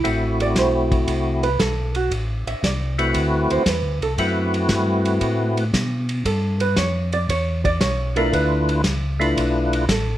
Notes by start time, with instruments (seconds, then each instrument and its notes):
0.04 tonewheel organ A1 A3 C4 E4 F#4, kick, ride
0.40 hollow-body jazz guitar D5, ride
0.55 tonewheel organ B1, hollow-body jazz guitar C5, kick, snare, hi-hat pedal, ride
0.92 kick, ride
1.07 tonewheel organ C2, kick, ride
1.43 hollow-body jazz guitar B4, ride
1.59 tonewheel organ B1, hollow-body jazz guitar A4, kick, snare, hi-hat pedal, ride
1.95 hollow-body jazz guitar F#4, ride
2.11 tonewheel organ A1, kick, ride
2.47 tonewheel organ A1, hollow-body jazz guitar E5, ride
2.63 tonewheel organ C2, hollow-body jazz guitar D5, kick, snare, hi-hat pedal, ride
2.98 tonewheel organ A3 C4 E4 F#4 B4, ride
3.14 tonewheel organ D2, kick, ride
3.50 tonewheel organ D2, hollow-body jazz guitar C5, ride
3.66 tonewheel organ E2, hollow-body jazz guitar B4, kick, snare, hi-hat pedal, ride
3.82 tonewheel organ D2
4.00 tonewheel organ C2, hollow-body jazz guitar A4, ride
4.18 tonewheel organ F#2 A3 C4 E4 F#4 B4, kick, ride
4.54 ride
4.69 tonewheel organ G2, kick, snare, hi-hat pedal, ride
5.05 ride
5.21 tonewheel organ A2, kick, ride
5.57 ride
5.73 tonewheel organ B2, kick, snare, hi-hat pedal, ride
6.09 ride
6.25 tonewheel organ G2, hollow-body jazz guitar A4, kick, ride
6.60 hollow-body jazz guitar B4, ride
6.76 tonewheel organ F2, hollow-body jazz guitar C#5, kick, snare, hi-hat pedal, ride
7.13 hollow-body jazz guitar D5, ride
7.29 tonewheel organ E2, hollow-body jazz guitar C#5, kick, ride
7.65 hollow-body jazz guitar D5, kick, ride
7.81 tonewheel organ B1, hollow-body jazz guitar C#5, kick, snare, hi-hat pedal, ride
8.16 tonewheel organ A3 D4 E4 F4 B4, hollow-body jazz guitar A#4, ride
8.33 tonewheel organ D2, hollow-body jazz guitar B4, kick, ride
8.69 ride
8.84 tonewheel organ C#2, kick, snare, hi-hat pedal, ride
9.19 tonewheel organ A3 D4 E4 F4 B4, ride
9.37 tonewheel organ B1, kick, ride
9.73 ride
9.88 tonewheel organ A1, hollow-body jazz guitar A4, kick, snare, hi-hat pedal, ride